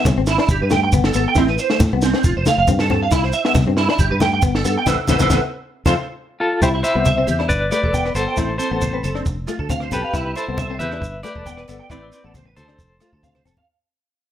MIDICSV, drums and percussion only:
0, 0, Header, 1, 3, 480
1, 0, Start_track
1, 0, Key_signature, 0, "major"
1, 0, Tempo, 437956
1, 1494, Time_signature, 4, 2, 24, 8
1, 8213, Tempo, 441501
1, 15629, End_track
2, 0, Start_track
2, 0, Title_t, "Shekere"
2, 58, Note_on_c, 9, 82, 90
2, 168, Note_off_c, 9, 82, 0
2, 292, Note_on_c, 9, 82, 71
2, 402, Note_off_c, 9, 82, 0
2, 534, Note_on_c, 9, 82, 83
2, 643, Note_off_c, 9, 82, 0
2, 771, Note_on_c, 9, 82, 76
2, 881, Note_off_c, 9, 82, 0
2, 1012, Note_on_c, 9, 82, 94
2, 1122, Note_off_c, 9, 82, 0
2, 1246, Note_on_c, 9, 82, 76
2, 1355, Note_off_c, 9, 82, 0
2, 1480, Note_on_c, 9, 82, 90
2, 1590, Note_off_c, 9, 82, 0
2, 1736, Note_on_c, 9, 82, 75
2, 1846, Note_off_c, 9, 82, 0
2, 1972, Note_on_c, 9, 82, 94
2, 2081, Note_off_c, 9, 82, 0
2, 2211, Note_on_c, 9, 82, 73
2, 2321, Note_off_c, 9, 82, 0
2, 2452, Note_on_c, 9, 82, 92
2, 2562, Note_off_c, 9, 82, 0
2, 2697, Note_on_c, 9, 82, 75
2, 2807, Note_off_c, 9, 82, 0
2, 2933, Note_on_c, 9, 82, 101
2, 3042, Note_off_c, 9, 82, 0
2, 3411, Note_on_c, 9, 82, 89
2, 3521, Note_off_c, 9, 82, 0
2, 3647, Note_on_c, 9, 82, 75
2, 3757, Note_off_c, 9, 82, 0
2, 3891, Note_on_c, 9, 82, 96
2, 4001, Note_off_c, 9, 82, 0
2, 4371, Note_on_c, 9, 82, 87
2, 4481, Note_off_c, 9, 82, 0
2, 4612, Note_on_c, 9, 82, 73
2, 4722, Note_off_c, 9, 82, 0
2, 4845, Note_on_c, 9, 82, 99
2, 4955, Note_off_c, 9, 82, 0
2, 5096, Note_on_c, 9, 82, 81
2, 5205, Note_off_c, 9, 82, 0
2, 5335, Note_on_c, 9, 82, 95
2, 5444, Note_off_c, 9, 82, 0
2, 5568, Note_on_c, 9, 82, 109
2, 5678, Note_off_c, 9, 82, 0
2, 5692, Note_on_c, 9, 82, 97
2, 5801, Note_off_c, 9, 82, 0
2, 5812, Note_on_c, 9, 82, 98
2, 5921, Note_off_c, 9, 82, 0
2, 6425, Note_on_c, 9, 82, 108
2, 6535, Note_off_c, 9, 82, 0
2, 7259, Note_on_c, 9, 82, 79
2, 7368, Note_off_c, 9, 82, 0
2, 7499, Note_on_c, 9, 82, 66
2, 7609, Note_off_c, 9, 82, 0
2, 7731, Note_on_c, 9, 82, 87
2, 7841, Note_off_c, 9, 82, 0
2, 7977, Note_on_c, 9, 82, 68
2, 8087, Note_off_c, 9, 82, 0
2, 8216, Note_on_c, 9, 82, 84
2, 8325, Note_off_c, 9, 82, 0
2, 8458, Note_on_c, 9, 82, 69
2, 8567, Note_off_c, 9, 82, 0
2, 8702, Note_on_c, 9, 82, 95
2, 8811, Note_off_c, 9, 82, 0
2, 8931, Note_on_c, 9, 82, 76
2, 9040, Note_off_c, 9, 82, 0
2, 9162, Note_on_c, 9, 82, 86
2, 9271, Note_off_c, 9, 82, 0
2, 9412, Note_on_c, 9, 82, 75
2, 9521, Note_off_c, 9, 82, 0
2, 9648, Note_on_c, 9, 82, 89
2, 9756, Note_off_c, 9, 82, 0
2, 9895, Note_on_c, 9, 82, 65
2, 10003, Note_off_c, 9, 82, 0
2, 10132, Note_on_c, 9, 82, 89
2, 10241, Note_off_c, 9, 82, 0
2, 10372, Note_on_c, 9, 82, 65
2, 10480, Note_off_c, 9, 82, 0
2, 10611, Note_on_c, 9, 82, 88
2, 10720, Note_off_c, 9, 82, 0
2, 10852, Note_on_c, 9, 82, 73
2, 10961, Note_off_c, 9, 82, 0
2, 11093, Note_on_c, 9, 82, 82
2, 11201, Note_off_c, 9, 82, 0
2, 11341, Note_on_c, 9, 82, 69
2, 11450, Note_off_c, 9, 82, 0
2, 11580, Note_on_c, 9, 82, 84
2, 11689, Note_off_c, 9, 82, 0
2, 11814, Note_on_c, 9, 82, 61
2, 11922, Note_off_c, 9, 82, 0
2, 12062, Note_on_c, 9, 82, 80
2, 12170, Note_off_c, 9, 82, 0
2, 12302, Note_on_c, 9, 82, 63
2, 12411, Note_off_c, 9, 82, 0
2, 12532, Note_on_c, 9, 82, 80
2, 12641, Note_off_c, 9, 82, 0
2, 12775, Note_on_c, 9, 82, 64
2, 12884, Note_off_c, 9, 82, 0
2, 13013, Note_on_c, 9, 82, 69
2, 13122, Note_off_c, 9, 82, 0
2, 13246, Note_on_c, 9, 82, 60
2, 13355, Note_off_c, 9, 82, 0
2, 13490, Note_on_c, 9, 82, 75
2, 13599, Note_off_c, 9, 82, 0
2, 13736, Note_on_c, 9, 82, 56
2, 13844, Note_off_c, 9, 82, 0
2, 13974, Note_on_c, 9, 82, 74
2, 14083, Note_off_c, 9, 82, 0
2, 14209, Note_on_c, 9, 82, 63
2, 14318, Note_off_c, 9, 82, 0
2, 14458, Note_on_c, 9, 82, 77
2, 14567, Note_off_c, 9, 82, 0
2, 14708, Note_on_c, 9, 82, 61
2, 14817, Note_off_c, 9, 82, 0
2, 15629, End_track
3, 0, Start_track
3, 0, Title_t, "Drums"
3, 57, Note_on_c, 9, 36, 99
3, 57, Note_on_c, 9, 38, 75
3, 67, Note_on_c, 9, 62, 34
3, 67, Note_on_c, 9, 63, 104
3, 166, Note_off_c, 9, 36, 0
3, 167, Note_off_c, 9, 38, 0
3, 177, Note_off_c, 9, 62, 0
3, 177, Note_off_c, 9, 63, 0
3, 297, Note_on_c, 9, 38, 76
3, 407, Note_off_c, 9, 38, 0
3, 419, Note_on_c, 9, 38, 76
3, 529, Note_off_c, 9, 38, 0
3, 534, Note_on_c, 9, 36, 99
3, 545, Note_on_c, 9, 62, 33
3, 643, Note_off_c, 9, 36, 0
3, 654, Note_off_c, 9, 62, 0
3, 773, Note_on_c, 9, 38, 74
3, 784, Note_on_c, 9, 62, 30
3, 784, Note_on_c, 9, 63, 75
3, 882, Note_off_c, 9, 38, 0
3, 893, Note_off_c, 9, 62, 0
3, 893, Note_off_c, 9, 63, 0
3, 1016, Note_on_c, 9, 36, 94
3, 1021, Note_on_c, 9, 63, 83
3, 1125, Note_off_c, 9, 36, 0
3, 1130, Note_off_c, 9, 63, 0
3, 1140, Note_on_c, 9, 38, 82
3, 1249, Note_off_c, 9, 38, 0
3, 1251, Note_on_c, 9, 38, 29
3, 1361, Note_off_c, 9, 38, 0
3, 1483, Note_on_c, 9, 38, 70
3, 1493, Note_on_c, 9, 36, 95
3, 1495, Note_on_c, 9, 62, 31
3, 1593, Note_off_c, 9, 38, 0
3, 1602, Note_off_c, 9, 36, 0
3, 1604, Note_off_c, 9, 62, 0
3, 1613, Note_on_c, 9, 38, 28
3, 1722, Note_off_c, 9, 38, 0
3, 1861, Note_on_c, 9, 38, 74
3, 1970, Note_off_c, 9, 38, 0
3, 1970, Note_on_c, 9, 38, 75
3, 1974, Note_on_c, 9, 62, 33
3, 1974, Note_on_c, 9, 63, 98
3, 1974, Note_on_c, 9, 64, 74
3, 1976, Note_on_c, 9, 36, 102
3, 2080, Note_off_c, 9, 38, 0
3, 2084, Note_off_c, 9, 62, 0
3, 2084, Note_off_c, 9, 63, 0
3, 2084, Note_off_c, 9, 64, 0
3, 2085, Note_off_c, 9, 36, 0
3, 2220, Note_on_c, 9, 38, 79
3, 2329, Note_off_c, 9, 38, 0
3, 2341, Note_on_c, 9, 38, 77
3, 2451, Note_off_c, 9, 38, 0
3, 2457, Note_on_c, 9, 36, 97
3, 2567, Note_off_c, 9, 36, 0
3, 2696, Note_on_c, 9, 62, 32
3, 2696, Note_on_c, 9, 63, 81
3, 2702, Note_on_c, 9, 38, 75
3, 2806, Note_off_c, 9, 62, 0
3, 2806, Note_off_c, 9, 63, 0
3, 2811, Note_off_c, 9, 38, 0
3, 2929, Note_on_c, 9, 63, 85
3, 2935, Note_on_c, 9, 36, 93
3, 3039, Note_off_c, 9, 63, 0
3, 3044, Note_off_c, 9, 36, 0
3, 3057, Note_on_c, 9, 38, 77
3, 3166, Note_off_c, 9, 38, 0
3, 3171, Note_on_c, 9, 38, 29
3, 3178, Note_on_c, 9, 64, 81
3, 3281, Note_off_c, 9, 38, 0
3, 3287, Note_off_c, 9, 64, 0
3, 3413, Note_on_c, 9, 36, 96
3, 3415, Note_on_c, 9, 38, 70
3, 3523, Note_off_c, 9, 36, 0
3, 3525, Note_off_c, 9, 38, 0
3, 3539, Note_on_c, 9, 38, 29
3, 3649, Note_off_c, 9, 38, 0
3, 3779, Note_on_c, 9, 38, 81
3, 3887, Note_on_c, 9, 62, 34
3, 3887, Note_on_c, 9, 63, 108
3, 3888, Note_off_c, 9, 38, 0
3, 3888, Note_on_c, 9, 38, 78
3, 3891, Note_on_c, 9, 36, 101
3, 3997, Note_off_c, 9, 38, 0
3, 3997, Note_off_c, 9, 62, 0
3, 3997, Note_off_c, 9, 63, 0
3, 4001, Note_off_c, 9, 36, 0
3, 4129, Note_on_c, 9, 38, 80
3, 4239, Note_off_c, 9, 38, 0
3, 4260, Note_on_c, 9, 38, 78
3, 4368, Note_on_c, 9, 62, 35
3, 4370, Note_off_c, 9, 38, 0
3, 4373, Note_on_c, 9, 36, 96
3, 4478, Note_off_c, 9, 62, 0
3, 4482, Note_off_c, 9, 36, 0
3, 4606, Note_on_c, 9, 62, 31
3, 4606, Note_on_c, 9, 63, 78
3, 4618, Note_on_c, 9, 38, 77
3, 4715, Note_off_c, 9, 62, 0
3, 4715, Note_off_c, 9, 63, 0
3, 4727, Note_off_c, 9, 38, 0
3, 4849, Note_on_c, 9, 63, 79
3, 4852, Note_on_c, 9, 36, 98
3, 4959, Note_off_c, 9, 63, 0
3, 4961, Note_off_c, 9, 36, 0
3, 4985, Note_on_c, 9, 38, 74
3, 5094, Note_off_c, 9, 38, 0
3, 5098, Note_on_c, 9, 38, 27
3, 5208, Note_off_c, 9, 38, 0
3, 5328, Note_on_c, 9, 63, 102
3, 5333, Note_on_c, 9, 36, 79
3, 5335, Note_on_c, 9, 38, 78
3, 5437, Note_off_c, 9, 63, 0
3, 5443, Note_off_c, 9, 36, 0
3, 5445, Note_off_c, 9, 38, 0
3, 5563, Note_on_c, 9, 63, 104
3, 5573, Note_on_c, 9, 36, 80
3, 5574, Note_on_c, 9, 38, 81
3, 5672, Note_off_c, 9, 63, 0
3, 5683, Note_off_c, 9, 36, 0
3, 5683, Note_off_c, 9, 38, 0
3, 5693, Note_on_c, 9, 63, 105
3, 5698, Note_on_c, 9, 36, 83
3, 5700, Note_on_c, 9, 38, 84
3, 5802, Note_off_c, 9, 63, 0
3, 5807, Note_off_c, 9, 38, 0
3, 5807, Note_on_c, 9, 38, 82
3, 5808, Note_off_c, 9, 36, 0
3, 5809, Note_on_c, 9, 63, 108
3, 5811, Note_on_c, 9, 36, 83
3, 5917, Note_off_c, 9, 38, 0
3, 5918, Note_off_c, 9, 63, 0
3, 5920, Note_off_c, 9, 36, 0
3, 6420, Note_on_c, 9, 36, 79
3, 6421, Note_on_c, 9, 63, 102
3, 6422, Note_on_c, 9, 38, 81
3, 6529, Note_off_c, 9, 36, 0
3, 6530, Note_off_c, 9, 63, 0
3, 6532, Note_off_c, 9, 38, 0
3, 7251, Note_on_c, 9, 62, 29
3, 7253, Note_on_c, 9, 36, 81
3, 7253, Note_on_c, 9, 37, 66
3, 7361, Note_off_c, 9, 62, 0
3, 7362, Note_off_c, 9, 37, 0
3, 7363, Note_off_c, 9, 36, 0
3, 7497, Note_on_c, 9, 42, 45
3, 7606, Note_off_c, 9, 42, 0
3, 7733, Note_on_c, 9, 63, 91
3, 7736, Note_on_c, 9, 36, 69
3, 7741, Note_on_c, 9, 37, 66
3, 7843, Note_off_c, 9, 63, 0
3, 7846, Note_off_c, 9, 36, 0
3, 7851, Note_off_c, 9, 37, 0
3, 7978, Note_on_c, 9, 42, 49
3, 7978, Note_on_c, 9, 63, 67
3, 8087, Note_off_c, 9, 42, 0
3, 8087, Note_off_c, 9, 63, 0
3, 8109, Note_on_c, 9, 37, 70
3, 8218, Note_off_c, 9, 37, 0
3, 8218, Note_on_c, 9, 36, 83
3, 8327, Note_off_c, 9, 36, 0
3, 8462, Note_on_c, 9, 37, 68
3, 8462, Note_on_c, 9, 42, 49
3, 8464, Note_on_c, 9, 62, 23
3, 8571, Note_off_c, 9, 37, 0
3, 8571, Note_off_c, 9, 42, 0
3, 8573, Note_off_c, 9, 62, 0
3, 8584, Note_on_c, 9, 36, 57
3, 8693, Note_off_c, 9, 36, 0
3, 8697, Note_on_c, 9, 36, 64
3, 8699, Note_on_c, 9, 63, 60
3, 8806, Note_off_c, 9, 36, 0
3, 8808, Note_off_c, 9, 63, 0
3, 8824, Note_on_c, 9, 37, 67
3, 8933, Note_off_c, 9, 37, 0
3, 8934, Note_on_c, 9, 62, 23
3, 8941, Note_on_c, 9, 42, 50
3, 9043, Note_off_c, 9, 62, 0
3, 9050, Note_off_c, 9, 42, 0
3, 9172, Note_on_c, 9, 36, 82
3, 9172, Note_on_c, 9, 37, 63
3, 9180, Note_on_c, 9, 62, 22
3, 9281, Note_off_c, 9, 36, 0
3, 9281, Note_off_c, 9, 37, 0
3, 9288, Note_off_c, 9, 62, 0
3, 9416, Note_on_c, 9, 42, 52
3, 9525, Note_off_c, 9, 42, 0
3, 9650, Note_on_c, 9, 36, 66
3, 9650, Note_on_c, 9, 37, 65
3, 9656, Note_on_c, 9, 63, 74
3, 9759, Note_off_c, 9, 36, 0
3, 9759, Note_off_c, 9, 37, 0
3, 9764, Note_off_c, 9, 63, 0
3, 9893, Note_on_c, 9, 42, 52
3, 9899, Note_on_c, 9, 63, 59
3, 10002, Note_off_c, 9, 42, 0
3, 10008, Note_off_c, 9, 63, 0
3, 10020, Note_on_c, 9, 37, 64
3, 10129, Note_off_c, 9, 37, 0
3, 10132, Note_on_c, 9, 62, 25
3, 10133, Note_on_c, 9, 36, 86
3, 10241, Note_off_c, 9, 36, 0
3, 10241, Note_off_c, 9, 62, 0
3, 10370, Note_on_c, 9, 62, 25
3, 10374, Note_on_c, 9, 37, 64
3, 10374, Note_on_c, 9, 42, 45
3, 10478, Note_off_c, 9, 62, 0
3, 10483, Note_off_c, 9, 37, 0
3, 10483, Note_off_c, 9, 42, 0
3, 10493, Note_on_c, 9, 36, 54
3, 10602, Note_off_c, 9, 36, 0
3, 10607, Note_on_c, 9, 36, 64
3, 10607, Note_on_c, 9, 63, 67
3, 10716, Note_off_c, 9, 36, 0
3, 10716, Note_off_c, 9, 63, 0
3, 10724, Note_on_c, 9, 37, 63
3, 10833, Note_off_c, 9, 37, 0
3, 10840, Note_on_c, 9, 42, 43
3, 10848, Note_on_c, 9, 62, 29
3, 10848, Note_on_c, 9, 64, 65
3, 10948, Note_off_c, 9, 42, 0
3, 10957, Note_off_c, 9, 62, 0
3, 10957, Note_off_c, 9, 64, 0
3, 11084, Note_on_c, 9, 37, 63
3, 11085, Note_on_c, 9, 36, 81
3, 11085, Note_on_c, 9, 62, 27
3, 11193, Note_off_c, 9, 37, 0
3, 11194, Note_off_c, 9, 36, 0
3, 11194, Note_off_c, 9, 62, 0
3, 11323, Note_on_c, 9, 42, 43
3, 11432, Note_off_c, 9, 42, 0
3, 11559, Note_on_c, 9, 37, 61
3, 11563, Note_on_c, 9, 36, 62
3, 11566, Note_on_c, 9, 63, 93
3, 11668, Note_off_c, 9, 37, 0
3, 11672, Note_off_c, 9, 36, 0
3, 11675, Note_off_c, 9, 63, 0
3, 11804, Note_on_c, 9, 42, 47
3, 11804, Note_on_c, 9, 63, 72
3, 11912, Note_off_c, 9, 63, 0
3, 11913, Note_off_c, 9, 42, 0
3, 11932, Note_on_c, 9, 37, 62
3, 12041, Note_off_c, 9, 37, 0
3, 12044, Note_on_c, 9, 36, 83
3, 12044, Note_on_c, 9, 62, 29
3, 12153, Note_off_c, 9, 36, 0
3, 12153, Note_off_c, 9, 62, 0
3, 12279, Note_on_c, 9, 37, 62
3, 12279, Note_on_c, 9, 42, 45
3, 12293, Note_on_c, 9, 62, 26
3, 12388, Note_off_c, 9, 37, 0
3, 12388, Note_off_c, 9, 42, 0
3, 12401, Note_off_c, 9, 62, 0
3, 12410, Note_on_c, 9, 36, 55
3, 12519, Note_off_c, 9, 36, 0
3, 12524, Note_on_c, 9, 36, 60
3, 12530, Note_on_c, 9, 63, 71
3, 12633, Note_off_c, 9, 36, 0
3, 12638, Note_off_c, 9, 63, 0
3, 12650, Note_on_c, 9, 37, 65
3, 12758, Note_off_c, 9, 37, 0
3, 12761, Note_on_c, 9, 42, 47
3, 12770, Note_on_c, 9, 62, 30
3, 12870, Note_off_c, 9, 42, 0
3, 12879, Note_off_c, 9, 62, 0
3, 12999, Note_on_c, 9, 37, 59
3, 13002, Note_on_c, 9, 36, 77
3, 13009, Note_on_c, 9, 62, 27
3, 13107, Note_off_c, 9, 37, 0
3, 13111, Note_off_c, 9, 36, 0
3, 13117, Note_off_c, 9, 62, 0
3, 13250, Note_on_c, 9, 42, 49
3, 13358, Note_off_c, 9, 42, 0
3, 13484, Note_on_c, 9, 37, 62
3, 13486, Note_on_c, 9, 36, 65
3, 13492, Note_on_c, 9, 63, 87
3, 13593, Note_off_c, 9, 37, 0
3, 13595, Note_off_c, 9, 36, 0
3, 13601, Note_off_c, 9, 63, 0
3, 13726, Note_on_c, 9, 42, 47
3, 13736, Note_on_c, 9, 63, 73
3, 13834, Note_off_c, 9, 42, 0
3, 13845, Note_off_c, 9, 63, 0
3, 13853, Note_on_c, 9, 37, 65
3, 13961, Note_off_c, 9, 37, 0
3, 13967, Note_on_c, 9, 36, 78
3, 14076, Note_off_c, 9, 36, 0
3, 14204, Note_on_c, 9, 37, 63
3, 14204, Note_on_c, 9, 42, 48
3, 14218, Note_on_c, 9, 62, 25
3, 14313, Note_off_c, 9, 37, 0
3, 14313, Note_off_c, 9, 42, 0
3, 14327, Note_off_c, 9, 62, 0
3, 14337, Note_on_c, 9, 36, 54
3, 14446, Note_off_c, 9, 36, 0
3, 14451, Note_on_c, 9, 36, 61
3, 14462, Note_on_c, 9, 63, 48
3, 14560, Note_off_c, 9, 36, 0
3, 14571, Note_off_c, 9, 63, 0
3, 14579, Note_on_c, 9, 37, 60
3, 14582, Note_on_c, 9, 63, 53
3, 14688, Note_off_c, 9, 37, 0
3, 14690, Note_off_c, 9, 63, 0
3, 14694, Note_on_c, 9, 42, 44
3, 14694, Note_on_c, 9, 64, 62
3, 14803, Note_off_c, 9, 42, 0
3, 14803, Note_off_c, 9, 64, 0
3, 14819, Note_on_c, 9, 64, 61
3, 14928, Note_off_c, 9, 64, 0
3, 15629, End_track
0, 0, End_of_file